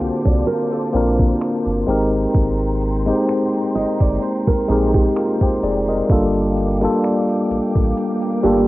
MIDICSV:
0, 0, Header, 1, 8, 480
1, 0, Start_track
1, 0, Tempo, 937500
1, 1201, Time_signature, 4, 2, 24, 8
1, 4443, End_track
2, 0, Start_track
2, 0, Title_t, "String section"
2, 0, Program_c, 0, 48
2, 0, Note_on_c, 0, 72, 78
2, 0, Note_on_c, 0, 77, 68
2, 0, Note_on_c, 0, 81, 70
2, 0, Note_on_c, 0, 86, 84
2, 944, Note_off_c, 0, 72, 0
2, 944, Note_off_c, 0, 77, 0
2, 944, Note_off_c, 0, 81, 0
2, 944, Note_off_c, 0, 86, 0
2, 960, Note_on_c, 0, 84, 85
2, 961, Note_on_c, 0, 58, 76
2, 961, Note_on_c, 0, 79, 72
2, 961, Note_on_c, 0, 82, 71
2, 3100, Note_off_c, 0, 84, 0
2, 3101, Note_off_c, 0, 79, 0
2, 3101, Note_off_c, 0, 82, 0
2, 3120, Note_on_c, 0, 86, 83
2, 3121, Note_on_c, 0, 77, 67
2, 3121, Note_on_c, 0, 79, 71
2, 4443, Note_off_c, 0, 58, 0
2, 4443, Note_off_c, 0, 77, 0
2, 4443, Note_off_c, 0, 79, 0
2, 4443, Note_off_c, 0, 86, 0
2, 4443, End_track
3, 0, Start_track
3, 0, Title_t, "Celesta"
3, 0, Program_c, 1, 8
3, 3601, Note_on_c, 1, 74, 67
3, 4443, Note_off_c, 1, 74, 0
3, 4443, End_track
4, 0, Start_track
4, 0, Title_t, "Nylon-string guitar"
4, 0, Program_c, 2, 24
4, 130, Note_on_c, 2, 74, 73
4, 235, Note_off_c, 2, 74, 0
4, 240, Note_on_c, 2, 70, 79
4, 370, Note_off_c, 2, 70, 0
4, 370, Note_on_c, 2, 69, 76
4, 940, Note_off_c, 2, 69, 0
4, 1921, Note_on_c, 2, 75, 70
4, 2051, Note_off_c, 2, 75, 0
4, 2051, Note_on_c, 2, 74, 80
4, 2161, Note_off_c, 2, 74, 0
4, 2161, Note_on_c, 2, 72, 74
4, 2284, Note_off_c, 2, 72, 0
4, 2290, Note_on_c, 2, 70, 86
4, 2400, Note_off_c, 2, 70, 0
4, 2400, Note_on_c, 2, 68, 82
4, 2524, Note_off_c, 2, 68, 0
4, 2530, Note_on_c, 2, 67, 70
4, 3100, Note_off_c, 2, 67, 0
4, 4321, Note_on_c, 2, 67, 78
4, 4443, Note_off_c, 2, 67, 0
4, 4443, End_track
5, 0, Start_track
5, 0, Title_t, "Tine electric piano"
5, 0, Program_c, 3, 4
5, 0, Control_c, 3, 64, 127
5, 0, Note_on_c, 3, 50, 75
5, 0, Note_on_c, 3, 58, 80
5, 0, Note_on_c, 3, 60, 76
5, 0, Note_on_c, 3, 62, 75
5, 0, Note_on_c, 3, 65, 78
5, 0, Note_on_c, 3, 66, 73
5, 0, Note_on_c, 3, 67, 93
5, 0, Note_on_c, 3, 69, 87
5, 333, Note_off_c, 3, 58, 0
5, 335, Note_off_c, 3, 60, 0
5, 338, Note_off_c, 3, 62, 0
5, 340, Note_off_c, 3, 65, 0
5, 359, Note_off_c, 3, 67, 0
5, 476, Note_on_c, 3, 58, 89
5, 481, Note_on_c, 3, 60, 80
5, 485, Note_on_c, 3, 62, 80
5, 490, Note_on_c, 3, 65, 79
5, 495, Note_on_c, 3, 70, 101
5, 954, Note_off_c, 3, 60, 0
5, 956, Note_on_c, 3, 56, 91
5, 959, Note_off_c, 3, 58, 0
5, 960, Note_on_c, 3, 60, 83
5, 963, Note_off_c, 3, 62, 0
5, 965, Note_off_c, 3, 65, 0
5, 965, Note_on_c, 3, 63, 88
5, 967, Control_c, 3, 64, 0
5, 968, Note_off_c, 3, 66, 0
5, 968, Note_off_c, 3, 70, 0
5, 969, Note_off_c, 3, 50, 0
5, 969, Note_off_c, 3, 69, 0
5, 970, Note_on_c, 3, 67, 81
5, 975, Note_on_c, 3, 70, 104
5, 1064, Control_c, 3, 64, 127
5, 1451, Note_off_c, 3, 56, 0
5, 1453, Note_off_c, 3, 60, 0
5, 1455, Note_off_c, 3, 63, 0
5, 1458, Note_off_c, 3, 67, 0
5, 1460, Note_off_c, 3, 70, 0
5, 1566, Note_on_c, 3, 56, 82
5, 1570, Note_on_c, 3, 60, 78
5, 1575, Note_on_c, 3, 63, 79
5, 1579, Note_on_c, 3, 67, 74
5, 1584, Note_on_c, 3, 72, 94
5, 2253, Note_off_c, 3, 56, 0
5, 2256, Note_off_c, 3, 60, 0
5, 2258, Note_off_c, 3, 63, 0
5, 2260, Note_off_c, 3, 67, 0
5, 2263, Note_off_c, 3, 72, 0
5, 2396, Note_on_c, 3, 56, 90
5, 2401, Note_on_c, 3, 60, 81
5, 2406, Note_on_c, 3, 63, 82
5, 2410, Note_on_c, 3, 67, 79
5, 2415, Note_on_c, 3, 70, 99
5, 2638, Note_off_c, 3, 70, 0
5, 2644, Note_on_c, 3, 70, 59
5, 2646, Note_off_c, 3, 67, 0
5, 2648, Note_on_c, 3, 65, 53
5, 2766, Note_off_c, 3, 70, 0
5, 2768, Note_off_c, 3, 65, 0
5, 2775, Note_on_c, 3, 72, 70
5, 2778, Note_on_c, 3, 67, 61
5, 2878, Note_off_c, 3, 72, 0
5, 2879, Note_off_c, 3, 67, 0
5, 2885, Note_on_c, 3, 74, 70
5, 2888, Note_on_c, 3, 68, 60
5, 2997, Note_off_c, 3, 56, 0
5, 2999, Note_off_c, 3, 60, 0
5, 3002, Note_off_c, 3, 63, 0
5, 3006, Note_off_c, 3, 74, 0
5, 3008, Note_off_c, 3, 68, 0
5, 3014, Note_on_c, 3, 75, 67
5, 3017, Note_on_c, 3, 70, 53
5, 3116, Note_on_c, 3, 55, 83
5, 3120, Note_on_c, 3, 58, 72
5, 3125, Note_on_c, 3, 62, 81
5, 3128, Control_c, 3, 64, 0
5, 3130, Note_on_c, 3, 65, 77
5, 3134, Note_on_c, 3, 69, 91
5, 3214, Control_c, 3, 64, 127
5, 3241, Note_off_c, 3, 75, 0
5, 3242, Note_off_c, 3, 70, 0
5, 3417, Note_off_c, 3, 55, 0
5, 3420, Note_off_c, 3, 58, 0
5, 3422, Note_off_c, 3, 62, 0
5, 3425, Note_off_c, 3, 65, 0
5, 3427, Note_off_c, 3, 69, 0
5, 3486, Note_on_c, 3, 55, 82
5, 3490, Note_on_c, 3, 58, 73
5, 3495, Note_on_c, 3, 62, 77
5, 3500, Note_on_c, 3, 65, 79
5, 3504, Note_on_c, 3, 69, 88
5, 4173, Note_off_c, 3, 55, 0
5, 4176, Note_off_c, 3, 58, 0
5, 4178, Note_off_c, 3, 62, 0
5, 4180, Note_off_c, 3, 65, 0
5, 4182, Note_off_c, 3, 69, 0
5, 4317, Note_on_c, 3, 55, 86
5, 4321, Note_on_c, 3, 58, 84
5, 4326, Note_on_c, 3, 62, 87
5, 4331, Note_on_c, 3, 65, 81
5, 4335, Note_on_c, 3, 69, 95
5, 4443, Note_off_c, 3, 55, 0
5, 4443, Note_off_c, 3, 58, 0
5, 4443, Note_off_c, 3, 62, 0
5, 4443, Note_off_c, 3, 65, 0
5, 4443, Note_off_c, 3, 69, 0
5, 4443, End_track
6, 0, Start_track
6, 0, Title_t, "Analog synth bass"
6, 0, Program_c, 4, 38
6, 3, Note_on_c, 4, 36, 47
6, 54, Note_off_c, 4, 36, 0
6, 131, Note_on_c, 4, 36, 82
6, 222, Note_off_c, 4, 36, 0
6, 483, Note_on_c, 4, 34, 94
6, 679, Note_off_c, 4, 34, 0
6, 852, Note_on_c, 4, 31, 90
6, 942, Note_off_c, 4, 31, 0
6, 962, Note_on_c, 4, 32, 95
6, 1159, Note_off_c, 4, 32, 0
6, 1202, Note_on_c, 4, 32, 106
6, 1596, Note_off_c, 4, 32, 0
6, 1922, Note_on_c, 4, 31, 47
6, 1974, Note_off_c, 4, 31, 0
6, 2051, Note_on_c, 4, 31, 92
6, 2142, Note_off_c, 4, 31, 0
6, 2402, Note_on_c, 4, 34, 94
6, 2599, Note_off_c, 4, 34, 0
6, 2882, Note_on_c, 4, 29, 96
6, 3079, Note_off_c, 4, 29, 0
6, 3122, Note_on_c, 4, 31, 111
6, 3516, Note_off_c, 4, 31, 0
6, 3843, Note_on_c, 4, 33, 48
6, 3894, Note_off_c, 4, 33, 0
6, 3971, Note_on_c, 4, 33, 88
6, 4062, Note_off_c, 4, 33, 0
6, 4323, Note_on_c, 4, 31, 102
6, 4443, Note_off_c, 4, 31, 0
6, 4443, End_track
7, 0, Start_track
7, 0, Title_t, "Swell"
7, 0, Program_c, 5, 103
7, 3121, Note_on_c, 5, 60, 77
7, 4443, Note_off_c, 5, 60, 0
7, 4443, End_track
8, 0, Start_track
8, 0, Title_t, "Drums"
8, 5, Note_on_c, 9, 42, 62
8, 57, Note_off_c, 9, 42, 0
8, 131, Note_on_c, 9, 36, 87
8, 135, Note_on_c, 9, 42, 49
8, 182, Note_off_c, 9, 36, 0
8, 186, Note_off_c, 9, 42, 0
8, 243, Note_on_c, 9, 42, 64
8, 294, Note_off_c, 9, 42, 0
8, 370, Note_on_c, 9, 42, 48
8, 421, Note_off_c, 9, 42, 0
8, 477, Note_on_c, 9, 42, 57
8, 529, Note_off_c, 9, 42, 0
8, 611, Note_on_c, 9, 36, 86
8, 662, Note_off_c, 9, 36, 0
8, 724, Note_on_c, 9, 26, 107
8, 726, Note_on_c, 9, 42, 61
8, 775, Note_off_c, 9, 26, 0
8, 777, Note_off_c, 9, 42, 0
8, 851, Note_on_c, 9, 42, 47
8, 903, Note_off_c, 9, 42, 0
8, 963, Note_on_c, 9, 42, 66
8, 1014, Note_off_c, 9, 42, 0
8, 1201, Note_on_c, 9, 36, 117
8, 1202, Note_on_c, 9, 42, 71
8, 1252, Note_off_c, 9, 36, 0
8, 1253, Note_off_c, 9, 42, 0
8, 1328, Note_on_c, 9, 42, 42
8, 1380, Note_off_c, 9, 42, 0
8, 1443, Note_on_c, 9, 42, 77
8, 1494, Note_off_c, 9, 42, 0
8, 1568, Note_on_c, 9, 42, 63
8, 1619, Note_off_c, 9, 42, 0
8, 1675, Note_on_c, 9, 42, 47
8, 1684, Note_on_c, 9, 26, 98
8, 1726, Note_off_c, 9, 42, 0
8, 1735, Note_off_c, 9, 26, 0
8, 1811, Note_on_c, 9, 42, 47
8, 1862, Note_off_c, 9, 42, 0
8, 1925, Note_on_c, 9, 42, 63
8, 1976, Note_off_c, 9, 42, 0
8, 2051, Note_on_c, 9, 36, 84
8, 2055, Note_on_c, 9, 42, 51
8, 2102, Note_off_c, 9, 36, 0
8, 2106, Note_off_c, 9, 42, 0
8, 2163, Note_on_c, 9, 42, 64
8, 2215, Note_off_c, 9, 42, 0
8, 2290, Note_on_c, 9, 42, 51
8, 2291, Note_on_c, 9, 36, 91
8, 2341, Note_off_c, 9, 42, 0
8, 2342, Note_off_c, 9, 36, 0
8, 2398, Note_on_c, 9, 42, 56
8, 2449, Note_off_c, 9, 42, 0
8, 2531, Note_on_c, 9, 36, 87
8, 2582, Note_off_c, 9, 36, 0
8, 2644, Note_on_c, 9, 26, 110
8, 2645, Note_on_c, 9, 42, 68
8, 2695, Note_off_c, 9, 26, 0
8, 2696, Note_off_c, 9, 42, 0
8, 2771, Note_on_c, 9, 36, 82
8, 2771, Note_on_c, 9, 42, 50
8, 2822, Note_off_c, 9, 36, 0
8, 2822, Note_off_c, 9, 42, 0
8, 2884, Note_on_c, 9, 42, 68
8, 2935, Note_off_c, 9, 42, 0
8, 3121, Note_on_c, 9, 36, 118
8, 3122, Note_on_c, 9, 42, 72
8, 3173, Note_off_c, 9, 36, 0
8, 3173, Note_off_c, 9, 42, 0
8, 3248, Note_on_c, 9, 42, 43
8, 3299, Note_off_c, 9, 42, 0
8, 3363, Note_on_c, 9, 42, 74
8, 3414, Note_off_c, 9, 42, 0
8, 3488, Note_on_c, 9, 42, 64
8, 3539, Note_off_c, 9, 42, 0
8, 3596, Note_on_c, 9, 42, 50
8, 3605, Note_on_c, 9, 26, 94
8, 3647, Note_off_c, 9, 42, 0
8, 3656, Note_off_c, 9, 26, 0
8, 3732, Note_on_c, 9, 42, 45
8, 3783, Note_off_c, 9, 42, 0
8, 3845, Note_on_c, 9, 42, 66
8, 3896, Note_off_c, 9, 42, 0
8, 3971, Note_on_c, 9, 36, 85
8, 3974, Note_on_c, 9, 42, 49
8, 4022, Note_off_c, 9, 36, 0
8, 4025, Note_off_c, 9, 42, 0
8, 4083, Note_on_c, 9, 42, 67
8, 4134, Note_off_c, 9, 42, 0
8, 4210, Note_on_c, 9, 42, 51
8, 4261, Note_off_c, 9, 42, 0
8, 4318, Note_on_c, 9, 42, 56
8, 4369, Note_off_c, 9, 42, 0
8, 4443, End_track
0, 0, End_of_file